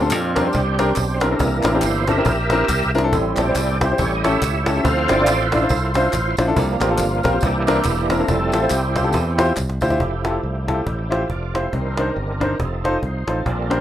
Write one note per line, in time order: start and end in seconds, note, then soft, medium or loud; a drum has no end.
0.00 0.12 D2 loud
0.00 0.32 A#2 medium
0.00 0.35 C4 medium
0.00 0.13 C4 medium
0.00 0.35 D4 medium
0.00 0.13 D4 medium
0.00 0.56 F4 medium
0.00 0.13 G4 medium
0.00 0.13 A4 medium
0.11 0.49 F2 medium
0.11 clap medium
0.11 tambourine loud
0.35 0.94 G3 medium
0.35 0.41 C4 medium
0.35 0.54 C4 medium
0.35 0.42 D4 medium
0.35 0.55 D4 medium
0.35 0.42 G4 medium
0.35 0.41 A#4 medium
0.35 cajon bass medium
0.35 cajon slap loud
0.35 tambourine soft
0.45 0.56 C4 medium
0.45 0.56 D4 medium
0.45 0.56 G4 medium
0.45 0.57 C5 medium
0.53 0.91 C2 loud
0.53 1.37 C4 medium
0.53 1.22 D4 medium
0.53 1.17 G4 medium
0.53 cajon bass loud
0.53 tambourine medium
0.79 0.90 C4 medium
0.79 0.90 D4 medium
0.79 0.90 G4 medium
0.79 0.90 A#4 medium
0.79 cajon slap loud
0.79 tambourine medium
0.96 1.34 B1 medium
0.96 cajon bass medium
0.96 clap medium
0.96 tambourine medium
1.14 1.23 C5 medium
1.20 1.27 C4 medium
1.20 1.27 D4 medium
1.20 1.39 D4 medium
1.20 2.05 E4 medium
1.20 1.27 G4 medium
1.20 1.27 A#4 medium
1.20 cajon slap loud
1.20 tambourine soft
1.24 1.87 A#4 loud
1.31 1.40 C4 medium
1.31 1.40 D4 medium
1.31 1.41 G4 medium
1.31 1.41 A4 medium
1.38 1.61 C2 medium
1.38 2.05 C3 medium
1.38 2.04 E3 medium
1.38 2.05 A#3 medium
1.38 2.05 D4 medium
1.38 cajon bass loud
1.38 tambourine medium
1.63 1.81 A1 medium
1.63 1.70 C4 medium
1.63 1.70 D4 medium
1.63 1.70 E4 medium
1.63 1.70 A#4 medium
1.63 cajon slap loud
1.63 clap medium
1.63 tambourine medium
1.74 1.85 C4 medium
1.74 1.86 D4 medium
1.74 1.86 E4 medium
1.74 1.86 G4 medium
1.82 2.20 G1 medium
1.82 2.08 C5 loud
1.82 clap medium
1.82 tambourine medium
2.07 2.14 C4 medium
2.07 2.14 D4 medium
2.07 2.14 E4 medium
2.07 2.91 G4 medium
2.07 2.14 A4 medium
2.07 2.91 A#4 medium
2.07 2.92 E5 loud
2.07 cajon bass medium
2.07 cajon slap loud
2.07 tambourine soft
2.18 2.29 C4 medium
2.18 2.29 D4 medium
2.18 2.29 E4 medium
2.18 2.29 A#4 medium
2.25 2.63 A#1 loud
2.25 cajon bass loud
2.25 tambourine medium
2.50 2.62 C4 medium
2.50 2.62 D4 medium
2.50 2.62 E4 medium
2.50 2.62 A#4 medium
2.50 cajon slap loud
2.50 tambourine medium
2.68 3.12 C2 loud
2.68 cajon bass medium
2.68 cajon slap medium
2.68 clap medium
2.68 tambourine medium
2.83 cajon bass medium
2.94 3.00 C4 medium
2.94 3.00 D4 medium
2.94 3.00 E4 medium
2.94 3.00 A#4 medium
2.94 cajon slap soft
2.94 tambourine soft
2.98 cajon slap loud
3.04 3.13 C4 medium
3.04 3.13 D4 medium
3.04 3.13 E4 medium
3.04 3.13 A4 medium
3.12 3.34 A1 medium
3.12 3.77 A2 medium
3.12 3.77 G3 medium
3.12 3.77 C4 soft
3.12 3.77 E4 medium
3.12 cajon bass loud
3.12 tambourine medium
3.36 3.53 A#1 medium
3.36 3.43 C4 medium
3.36 3.43 E4 medium
3.36 3.43 G4 medium
3.36 3.96 G4 medium
3.36 3.43 A4 medium
3.36 3.78 D5 medium
3.36 cajon slap loud
3.36 clap medium
3.36 tambourine medium
3.48 3.58 C4 medium
3.48 3.58 E4 medium
3.48 3.58 G4 medium
3.48 3.58 C5 medium
3.55 3.92 C2 medium
3.55 clap loud
3.55 tambourine loud
3.81 3.87 C4 medium
3.81 3.87 E4 medium
3.81 3.87 G4 medium
3.81 3.87 C5 medium
3.81 cajon bass loud
3.81 cajon slap loud
3.81 tambourine soft
3.91 4.00 C4 medium
3.91 4.00 E4 medium
3.91 4.00 G4 medium
3.91 4.00 C5 medium
3.97 4.36 A1 loud
3.97 4.63 A2 medium
3.97 4.29 G3 medium
3.97 4.30 C#4 medium
3.97 4.81 E4 medium
3.97 4.23 G4 medium
3.97 4.16 C#5 medium
3.97 cajon bass loud
3.97 tambourine medium
4.15 4.23 D#5 medium
4.24 4.35 C#4 medium
4.24 4.35 E4 medium
4.24 4.81 G4 medium
4.24 4.35 G4 medium
4.24 4.35 A4 medium
4.24 4.81 C#5 medium
4.24 4.87 E5 medium
4.24 cajon slap loud
4.24 tambourine medium
4.42 4.78 C#2 medium
4.42 cajon bass medium
4.42 clap medium
4.42 tambourine medium
4.66 4.72 C#4 medium
4.66 4.72 E4 medium
4.66 4.72 G4 medium
4.66 4.72 A4 medium
4.66 cajon slap loud
4.66 tambourine medium
4.76 4.85 C#4 medium
4.76 4.85 E4 medium
4.76 4.85 G4 medium
4.76 4.85 A4 medium
4.83 5.06 D2 medium
4.83 5.49 D3 medium
4.83 5.49 F3 medium
4.83 5.49 C4 soft
4.83 5.49 E4 medium
4.83 5.10 A4 medium
4.83 5.54 C5 medium
4.83 5.10 F5 loud
4.83 cajon bass loud
4.83 tambourine medium
5.09 5.27 G1 medium
5.09 5.15 D4 medium
5.09 5.15 E4 medium
5.09 5.15 F4 medium
5.09 5.54 F4 medium
5.09 5.92 A4 medium
5.09 5.15 C5 medium
5.09 5.46 D5 loud
5.09 cajon slap loud
5.09 clap medium
5.09 tambourine medium
5.19 5.30 D4 medium
5.19 5.30 E4 medium
5.19 5.30 F4 medium
5.19 5.30 D5 medium
5.27 5.64 A1 medium
5.27 clap loud
5.27 tambourine medium
5.45 5.53 B4 medium
5.52 5.58 D4 medium
5.52 5.58 E4 medium
5.52 6.36 E4 medium
5.52 5.58 F4 medium
5.52 6.36 F4 medium
5.52 6.36 C5 medium
5.52 5.58 D5 medium
5.52 cajon bass medium
5.52 cajon slap loud
5.52 tambourine soft
5.62 5.73 D4 medium
5.62 5.73 E4 medium
5.62 5.73 F4 medium
5.62 5.73 C5 medium
5.69 6.07 C2 loud
5.69 cajon bass loud
5.69 tambourine medium
5.94 6.06 D4 medium
5.94 6.06 E4 medium
5.94 6.06 F4 medium
5.94 6.07 C5 medium
5.94 cajon slap loud
5.94 tambourine medium
6.13 6.35 A1 medium
6.13 cajon bass loud
6.13 clap medium
6.13 tambourine medium
6.37 6.54 A#1 loud
6.37 6.44 D4 medium
6.37 6.44 E4 medium
6.37 6.44 F4 medium
6.37 6.44 C5 medium
6.37 cajon slap loud
6.37 tambourine medium
6.47 6.57 D4 medium
6.47 6.57 E4 medium
6.47 6.57 F4 medium
6.47 6.57 A4 medium
6.56 6.78 C2 loud
6.56 7.20 C3 medium
6.56 7.21 F3 medium
6.56 6.82 A#3 soft
6.56 7.22 D4 medium
6.56 cajon bass loud
6.56 tambourine medium
6.80 7.00 A1 medium
6.80 7.39 A#3 medium
6.80 6.87 C4 medium
6.80 6.87 F4 medium
6.80 7.39 F4 medium
6.80 6.87 G4 medium
6.80 6.87 A#4 medium
6.80 cajon slap loud
6.80 clap medium
6.80 tambourine medium
6.90 7.01 C4 medium
6.90 7.01 F4 medium
6.90 7.02 G4 medium
6.90 7.02 A4 medium
6.98 7.20 G1 medium
6.98 clap medium
6.98 tambourine loud
7.23 7.40 A#1 medium
7.23 7.29 C4 medium
7.23 7.29 F4 medium
7.23 7.29 G4 medium
7.23 7.30 A#4 medium
7.23 cajon bass loud
7.23 cajon slap loud
7.23 tambourine soft
7.32 7.42 C4 medium
7.32 7.42 F4 medium
7.32 7.42 G4 medium
7.32 7.42 C5 medium
7.41 7.79 C2 loud
7.41 8.06 C3 medium
7.41 8.25 E3 medium
7.41 8.26 A#3 medium
7.41 8.12 G4 loud
7.41 cajon bass loud
7.41 tambourine medium
7.45 8.26 D4 medium
7.45 8.26 E4 medium
7.67 7.78 C4 medium
7.67 7.78 D4 medium
7.67 7.78 E4 medium
7.67 7.78 A#4 loud
7.67 cajon slap loud
7.67 tambourine medium
7.84 8.22 E1 medium
7.84 cajon bass medium
7.84 clap medium
7.84 tambourine loud
8.10 8.16 C4 medium
8.10 8.16 D4 medium
8.10 8.16 E4 medium
8.10 8.29 A#4 medium
8.10 8.16 A#4 medium
8.10 cajon slap loud
8.10 tambourine soft
8.19 8.28 C4 medium
8.19 8.28 D4 medium
8.19 8.28 E4 medium
8.19 8.28 A4 medium
8.28 8.50 F1 medium
8.28 8.60 G3 medium
8.28 8.60 A3 medium
8.28 8.70 C4 medium
8.28 8.72 E4 medium
8.28 8.73 A4 medium
8.28 cajon bass loud
8.28 tambourine medium
8.52 8.69 A1 medium
8.52 8.59 E4 medium
8.52 8.59 F4 medium
8.52 8.59 G4 medium
8.52 8.59 A4 medium
8.52 cajon slap loud
8.52 tambourine medium
8.62 8.73 E4 medium
8.62 8.73 F4 medium
8.62 8.73 G4 medium
8.62 8.73 C5 medium
8.70 9.14 C2 loud
8.70 9.54 C4 medium
8.70 9.54 E4 medium
8.70 9.53 G4 medium
8.70 clap loud
8.70 tambourine loud
8.96 9.01 E4 medium
8.96 9.01 F4 medium
8.96 9.01 G4 medium
8.96 9.01 C5 medium
8.96 cajon bass medium
8.96 cajon slap loud
8.96 tambourine medium
9.04 9.15 E4 medium
9.04 9.16 F4 medium
9.04 9.16 G4 medium
9.04 9.16 A4 medium
9.13 9.51 E2 loud
9.13 cajon bass loud
9.13 tambourine medium
9.38 9.49 E4 medium
9.38 9.49 F4 medium
9.38 9.49 G4 medium
9.38 9.49 C5 loud
9.38 cajon slap loud
9.38 tambourine medium
9.56 9.79 C2 medium
9.56 cajon bass medium
9.56 cajon slap medium
9.56 clap medium
9.56 tambourine medium
9.69 cajon slap medium
9.81 9.98 D2 medium
9.81 9.87 E4 medium
9.81 9.87 F4 medium
9.81 9.87 G4 medium
9.81 9.87 C5 medium
9.81 cajon bass loud
9.81 tambourine medium
9.90 10.00 E4 medium
9.90 10.00 F4 medium
9.90 10.00 G4 medium
9.90 10.00 C5 medium
9.90 cajon bass medium
10.00 10.37 F1 medium
10.00 11.70 F3 medium
10.00 11.71 A3 medium
10.00 11.28 E4 medium
10.00 11.28 G4 medium
10.00 cajon bass loud
10.25 10.36 E4 medium
10.25 10.36 F4 medium
10.25 10.36 G4 medium
10.25 10.36 A4 medium
10.25 cajon slap loud
10.43 10.80 C2 medium
10.43 cajon slap soft
10.68 10.79 E4 medium
10.68 10.79 F4 medium
10.68 10.79 G4 medium
10.68 10.79 A4 medium
10.68 cajon bass medium
10.68 cajon slap medium
10.87 11.23 A1 medium
10.87 cajon bass loud
11.10 11.21 E4 medium
11.10 11.21 F4 medium
11.10 11.21 G4 medium
11.10 11.22 C5 medium
11.10 cajon slap medium
11.29 11.66 F1 medium
11.29 11.54 F4 soft
11.29 11.54 D5 medium
11.29 cajon bass medium
11.54 11.65 E4 medium
11.54 11.96 E4 soft
11.54 11.65 F4 medium
11.54 11.65 G4 medium
11.54 11.65 C5 medium
11.54 11.96 C5 medium
11.54 cajon slap medium
11.73 12.10 C2 medium
11.73 12.37 C3 medium
11.73 12.58 D#3 medium
11.73 12.58 C4 medium
11.73 12.58 D4 medium
11.73 12.58 A#4 medium
11.73 cajon bass loud
11.97 12.08 D4 medium
11.97 12.08 D#4 medium
11.97 12.09 A#4 medium
11.97 12.09 C5 medium
11.97 cajon slap loud
12.16 12.53 G1 medium
12.16 cajon slap soft
12.40 12.51 D4 medium
12.40 12.51 D#4 medium
12.40 12.52 A#4 medium
12.40 12.52 C5 medium
12.40 cajon bass medium
12.40 cajon slap medium
12.60 12.96 F1 medium
12.60 13.44 F3 medium
12.60 12.84 C4 medium
12.60 12.84 D#4 medium
12.60 12.66 G#4 medium
12.60 cajon bass loud
12.65 12.87 A4 medium
12.84 12.95 D#4 medium
12.84 12.95 F4 medium
12.84 13.03 G4 soft
12.84 12.95 A4 medium
12.84 12.95 C5 loud
12.84 13.02 D#5 medium
12.84 cajon slap loud
13.03 13.24 C2 medium
13.03 13.28 D#4 medium
13.03 13.28 C5 medium
13.03 cajon bass medium
13.28 13.43 A1 medium
13.28 13.45 C4 soft
13.28 13.38 D#4 medium
13.28 13.38 F4 medium
13.28 13.38 A4 medium
13.28 13.69 A4 medium
13.28 13.38 C5 medium
13.28 cajon slap loud
13.46 13.81 A#1 medium
13.46 13.81 A#2 medium
13.46 13.81 G3 medium
13.46 13.81 C4 medium
13.46 13.81 D4 medium
13.46 13.81 A#4 medium
13.46 cajon bass loud
13.70 13.81 D4 medium
13.70 13.81 G4 medium
13.70 13.81 A#4 medium
13.70 13.81 C5 medium
13.70 cajon slap loud